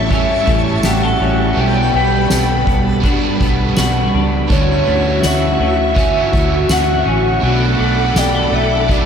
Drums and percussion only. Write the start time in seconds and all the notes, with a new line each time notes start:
0.10 kick, ride
0.47 kick
0.83 snare, ride, tambourine
1.57 ride
2.30 snare, tambourine
2.67 kick
3.03 kick, ride
3.41 kick
3.77 snare, ride, tambourine
4.50 kick
5.23 snare, tambourine
5.96 kick
6.33 kick
6.69 snare, ride, tambourine
7.43 ride
8.16 snare, ride, tambourine
8.89 kick, ride